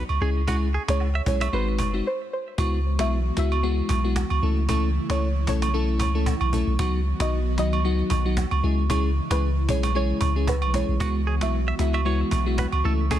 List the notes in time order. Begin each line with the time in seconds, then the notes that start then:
0.09 C#2, cajon slap, high agogo
0.21 C#2 G#3 C#4 E4 G#4
0.36 cajon slap
0.47 G#3 C#4 E4 F#4 G#4, cajon bass, high agogo
0.62 cajon slap
0.74 G#4
0.88 C#2 G#3 C#4 E4 G#4 C#5, cajon slap, high agogo
1.00 cajon slap, low woodblock
1.15 E5, cajon slap
1.26 B1 G#3 C#4 E4 G#4 C#5, cajon bass, cajon slap
1.41 E5, cajon slap, high agogo
1.53 G#1 G#3 C4 D#4 F#4 B4 C5, cajon slap
1.67 cajon slap
1.78 F#1, cajon bass, cajon slap, high agogo
1.93 G#3 C4 D#4 F#4, cajon slap
2.07 C5
2.33 C5
2.58 C#2 E3 G#3 B3 E4 F#4, cajon bass, high agogo
2.73 cajon slap
2.99 B1 G#3 B3 E4 F#4 E5, cajon slap, high agogo
3.11 cajon slap
3.26 cajon slap
3.37 C#2 G#3 B3 E4 F#4 E5, cajon slap
3.51 cajon slap, high agogo
3.63 G#3 B3 E4 F#4, cajon slap
3.77 cajon slap
3.89 B1, cajon bass, cajon slap, high agogo
4.04 G#3 B3 E4 F#4, cajon slap
4.16 cajon bass, cajon slap, low woodblock
4.30 C#2, cajon slap, high agogo
4.42 C#2 C#3 A3 C#4 E4 A4
4.57 cajon slap
4.69 A3 C#4 E4 A4, cajon bass, high agogo
5.09 C#2 A3 C#4 E4 A4 C#5, cajon slap, high agogo
5.21 cajon slap
5.36 cajon slap
5.47 B1 A3 C#4 E4 A4 C#5, cajon bass, cajon slap
5.62 cajon slap, high agogo
5.74 A3 C#4 E4 A4, cajon slap
5.88 cajon slap
6.00 C#2, cajon bass, cajon slap, high agogo
6.15 A3 C#4 E4 A4, cajon slap
6.26 cajon bass, low woodblock
6.41 B1, high agogo
6.53 A3 C#4 E4 A4, cajon bass
6.67 B1, cajon slap
6.79 C#2 D#3 F#3 B3 D#4 F#4, cajon bass, high agogo
6.93 cajon slap
7.20 B1 F#3 B3 D#4 F#4 D#5, cajon slap, high agogo
7.32 cajon slap
7.47 cajon slap
7.58 C#2 F#3 B3 D#4 F#4 D#5, cajon slap
7.72 cajon slap, high agogo
7.84 F#3 B3 D#4 F#4, cajon slap
7.99 cajon slap
8.10 B1, cajon bass, cajon slap, high agogo
8.25 F#3 B3 D#4 F#4, cajon slap
8.37 cajon bass, cajon slap, low woodblock
8.51 C#2, cajon slap, high agogo
8.63 C#2 C#3 E3 G#3 C#4 E4 G#4
8.78 cajon slap
8.90 G#3 C#4 E4 G#4, cajon bass, high agogo
9.04 cajon slap
9.30 C#2 G#3 C#4 E4 G#4 B4, cajon slap, high agogo
9.42 cajon slap
9.57 cajon slap
9.68 B1 G#3 C#4 E4 G#4 C#5, cajon bass, cajon slap
9.83 cajon slap, high agogo
9.95 G#3 C#4 E4 G#4 C#5, cajon slap
10.09 cajon slap
10.21 C#2, cajon bass, cajon slap, high agogo
10.36 G#3 C#4 E4 G#4, cajon slap
10.47 B4, cajon bass, low woodblock
10.62 B1, cajon slap, high agogo
10.74 G#3 C#4 E4 G#4 C#5, cajon bass, cajon slap
10.88 B1, cajon slap
11.00 C#2 G#3 B3 E4 F#4, cajon bass, high agogo
11.15 cajon slap
11.27 G#4
11.41 B1 G#3 B3 E4 F#4 E5, cajon slap, high agogo
11.68 E5, cajon slap
11.79 C#2 G#3 B3 E4 F#4 E5, cajon slap
11.94 E5, cajon slap, high agogo
12.05 G#3 B3 E4 F#4 C#5, cajon slap
12.20 cajon slap
12.31 B1, cajon bass, cajon slap, high agogo
12.46 G#3 B3 E4 F#4, cajon slap
12.58 B4, cajon bass, cajon slap, low woodblock
12.72 C#2, high agogo
12.84 C#2 C#3 A3 C#4 E4 A4
12.99 cajon slap
13.11 A3 C#4 E4 G#4 A4, cajon bass, high agogo